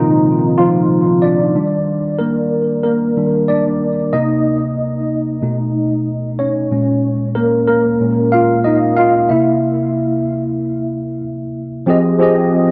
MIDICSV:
0, 0, Header, 1, 2, 480
1, 0, Start_track
1, 0, Tempo, 645161
1, 1152, Time_signature, 4, 2, 24, 8
1, 9459, End_track
2, 0, Start_track
2, 0, Title_t, "Tine electric piano"
2, 0, Program_c, 0, 4
2, 0, Control_c, 0, 64, 127
2, 0, Note_on_c, 0, 46, 72
2, 0, Note_on_c, 0, 48, 76
2, 0, Note_on_c, 0, 51, 83
2, 0, Note_on_c, 0, 53, 59
2, 0, Note_on_c, 0, 56, 54
2, 0, Note_on_c, 0, 58, 86
2, 0, Note_on_c, 0, 60, 95
2, 0, Note_on_c, 0, 63, 103
2, 0, Note_on_c, 0, 65, 84
2, 408, Note_off_c, 0, 51, 0
2, 429, Note_off_c, 0, 65, 0
2, 429, Note_on_c, 0, 65, 108
2, 442, Note_off_c, 0, 53, 0
2, 442, Note_on_c, 0, 53, 85
2, 446, Note_off_c, 0, 63, 0
2, 881, Note_off_c, 0, 65, 0
2, 887, Note_off_c, 0, 53, 0
2, 907, Note_on_c, 0, 74, 100
2, 921, Note_on_c, 0, 62, 72
2, 1149, Note_off_c, 0, 62, 0
2, 1149, Note_on_c, 0, 51, 51
2, 1154, Note_on_c, 0, 55, 48
2, 1157, Note_on_c, 0, 62, 57
2, 1161, Control_c, 0, 64, 0
2, 1164, Note_off_c, 0, 58, 0
2, 1167, Note_off_c, 0, 46, 0
2, 1167, Note_off_c, 0, 56, 0
2, 1167, Note_off_c, 0, 60, 0
2, 1168, Note_off_c, 0, 48, 0
2, 1298, Control_c, 0, 64, 127
2, 1626, Note_on_c, 0, 70, 79
2, 1639, Note_on_c, 0, 58, 58
2, 1651, Note_off_c, 0, 74, 0
2, 2079, Note_off_c, 0, 70, 0
2, 2086, Note_off_c, 0, 58, 0
2, 2109, Note_on_c, 0, 70, 76
2, 2124, Note_on_c, 0, 58, 58
2, 2346, Note_off_c, 0, 51, 0
2, 2348, Note_off_c, 0, 55, 0
2, 2352, Note_off_c, 0, 62, 0
2, 2354, Note_on_c, 0, 51, 48
2, 2357, Note_on_c, 0, 55, 43
2, 2361, Note_on_c, 0, 62, 53
2, 2568, Note_off_c, 0, 58, 0
2, 2569, Note_off_c, 0, 51, 0
2, 2571, Note_off_c, 0, 55, 0
2, 2573, Note_off_c, 0, 62, 0
2, 2591, Note_on_c, 0, 74, 94
2, 2603, Note_on_c, 0, 62, 72
2, 2605, Note_off_c, 0, 70, 0
2, 3048, Note_off_c, 0, 62, 0
2, 3072, Note_on_c, 0, 75, 94
2, 3073, Note_on_c, 0, 48, 53
2, 3078, Note_on_c, 0, 58, 50
2, 3080, Note_on_c, 0, 63, 70
2, 3082, Control_c, 0, 64, 0
2, 3086, Note_off_c, 0, 74, 0
2, 3196, Control_c, 0, 64, 127
2, 3413, Note_off_c, 0, 48, 0
2, 3416, Note_off_c, 0, 58, 0
2, 4031, Note_off_c, 0, 63, 0
2, 4031, Note_on_c, 0, 47, 49
2, 4037, Note_on_c, 0, 57, 48
2, 4040, Note_on_c, 0, 63, 53
2, 4042, Control_c, 0, 64, 0
2, 4179, Control_c, 0, 64, 127
2, 4482, Note_off_c, 0, 75, 0
2, 4754, Note_on_c, 0, 73, 85
2, 4760, Note_on_c, 0, 61, 71
2, 4962, Note_off_c, 0, 47, 0
2, 4965, Note_off_c, 0, 57, 0
2, 4966, Note_off_c, 0, 63, 0
2, 4992, Note_off_c, 0, 61, 0
2, 4994, Note_on_c, 0, 46, 53
2, 4996, Note_on_c, 0, 56, 50
2, 5001, Control_c, 0, 64, 0
2, 5001, Note_on_c, 0, 61, 60
2, 5123, Control_c, 0, 64, 127
2, 5334, Note_off_c, 0, 46, 0
2, 5335, Note_off_c, 0, 56, 0
2, 5337, Note_off_c, 0, 61, 0
2, 5469, Note_on_c, 0, 70, 88
2, 5479, Note_on_c, 0, 58, 68
2, 5494, Note_off_c, 0, 73, 0
2, 5699, Note_off_c, 0, 58, 0
2, 5701, Note_off_c, 0, 70, 0
2, 5709, Note_on_c, 0, 70, 90
2, 5722, Note_on_c, 0, 58, 68
2, 5955, Note_on_c, 0, 46, 44
2, 5959, Note_on_c, 0, 56, 45
2, 5962, Note_on_c, 0, 61, 52
2, 6167, Note_off_c, 0, 58, 0
2, 6169, Note_off_c, 0, 46, 0
2, 6172, Note_off_c, 0, 56, 0
2, 6173, Note_off_c, 0, 61, 0
2, 6190, Note_on_c, 0, 77, 102
2, 6203, Note_on_c, 0, 65, 80
2, 6205, Note_off_c, 0, 70, 0
2, 6421, Note_off_c, 0, 65, 0
2, 6431, Note_on_c, 0, 75, 92
2, 6438, Note_off_c, 0, 77, 0
2, 6445, Note_on_c, 0, 63, 77
2, 6662, Note_off_c, 0, 63, 0
2, 6670, Note_on_c, 0, 77, 103
2, 6679, Note_off_c, 0, 75, 0
2, 6686, Note_on_c, 0, 65, 75
2, 6903, Note_off_c, 0, 65, 0
2, 6913, Note_on_c, 0, 76, 91
2, 6915, Note_on_c, 0, 48, 55
2, 6918, Note_off_c, 0, 77, 0
2, 6921, Note_on_c, 0, 58, 48
2, 6922, Control_c, 0, 64, 0
2, 6926, Note_on_c, 0, 64, 75
2, 7071, Control_c, 0, 64, 127
2, 7604, Note_off_c, 0, 48, 0
2, 7607, Note_off_c, 0, 58, 0
2, 8323, Note_off_c, 0, 76, 0
2, 8330, Note_off_c, 0, 64, 0
2, 8826, Note_on_c, 0, 53, 92
2, 8832, Note_on_c, 0, 60, 84
2, 8840, Note_on_c, 0, 67, 81
2, 8842, Control_c, 0, 64, 0
2, 8847, Note_on_c, 0, 68, 83
2, 8853, Note_on_c, 0, 75, 96
2, 8977, Control_c, 0, 64, 127
2, 9049, Note_off_c, 0, 53, 0
2, 9051, Note_off_c, 0, 60, 0
2, 9056, Note_off_c, 0, 67, 0
2, 9059, Note_off_c, 0, 68, 0
2, 9062, Note_off_c, 0, 75, 0
2, 9065, Note_on_c, 0, 53, 91
2, 9073, Note_on_c, 0, 60, 86
2, 9080, Note_on_c, 0, 67, 86
2, 9086, Note_on_c, 0, 68, 86
2, 9095, Note_on_c, 0, 75, 100
2, 9459, Note_off_c, 0, 53, 0
2, 9459, Note_off_c, 0, 60, 0
2, 9459, Note_off_c, 0, 67, 0
2, 9459, Note_off_c, 0, 68, 0
2, 9459, Note_off_c, 0, 75, 0
2, 9459, End_track
0, 0, End_of_file